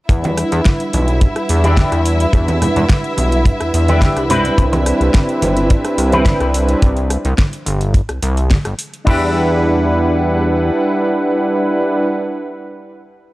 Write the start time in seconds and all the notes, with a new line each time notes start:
0.09 E2 G3 D4 E4 B4 E5 F#5, muted clean electric guitar stroke, kick, closed hi-hat
0.23 muted clean electric guitar stroke, closed hi-hat, high conga
0.37 muted clean electric guitar stroke, cross-stick, open hi-hat
0.52 E2, closed hi-hat
0.65 kick, snare, closed hi-hat
0.80 closed hi-hat
0.93 B1, open hi-hat, high conga
1.08 closed hi-hat
1.21 muted clean electric guitar stroke, kick, closed hi-hat
1.35 muted clean electric guitar stroke, cross-stick, closed hi-hat
1.49 E2, open hi-hat
1.64 D4 E4 G4, closed hi-hat, high conga
1.77 kick, snare, closed hi-hat
1.92 E2, cross-stick, closed hi-hat
2.05 G3 D4 E4 F#4 B4, open hi-hat
2.20 closed hi-hat
2.32 E2 G3 D4 E4 B4 F#5, muted clean electric guitar stroke, kick, closed hi-hat
2.48 muted clean electric guitar stroke, closed hi-hat, high conga
2.62 muted clean electric guitar stroke, cross-stick, open hi-hat, low conga
2.76 E2, closed hi-hat, low conga
2.89 kick, snare, closed hi-hat
3.04 closed hi-hat
3.17 B1, open hi-hat, high conga
3.32 closed hi-hat
3.45 muted clean electric guitar stroke, kick, closed hi-hat
3.60 E2, muted clean electric guitar stroke, cross-stick, closed hi-hat
3.74 E2, open hi-hat
3.88 D4 E4 G4, closed hi-hat, high conga
4.02 kick, snare, closed hi-hat
4.16 C2, cross-stick, closed hi-hat
4.30 G3 C4 D4 E4 B4, open hi-hat, low conga
4.45 closed hi-hat
4.57 C2 G3 C4 D4 E4 B4, kick, closed hi-hat
4.72 muted clean electric guitar stroke, closed hi-hat, high conga
4.86 muted clean electric guitar stroke, cross-stick, open hi-hat
5.01 C2, closed hi-hat
5.14 kick, snare, closed hi-hat
5.29 closed hi-hat
5.42 G1, open hi-hat, high conga
5.57 closed hi-hat
5.70 muted clean electric guitar stroke, kick, closed hi-hat
5.85 muted clean electric guitar stroke, cross-stick, closed hi-hat
5.98 C2, open hi-hat
6.12 C4 E4 B4, closed hi-hat, high conga
6.26 kick, snare, closed hi-hat
6.41 C2, cross-stick, closed hi-hat
6.54 G3 C4 D4 E4 B4, open hi-hat
6.69 closed hi-hat
6.82 C2, kick, closed hi-hat
6.97 closed hi-hat
7.10 cross-stick, open hi-hat
7.25 C2, closed hi-hat
7.38 kick, snare, closed hi-hat
7.53 closed hi-hat
7.66 G1, open hi-hat
7.81 closed hi-hat
7.94 kick, closed hi-hat
8.09 C2, cross-stick, closed hi-hat
8.22 C2, open hi-hat
8.37 closed hi-hat
8.51 kick, snare, closed hi-hat
8.65 G1, cross-stick, closed hi-hat
8.79 open hi-hat
8.94 closed hi-hat
9.05 E2 G3 D4 E4 F#5, kick, crash
9.09 G4 B4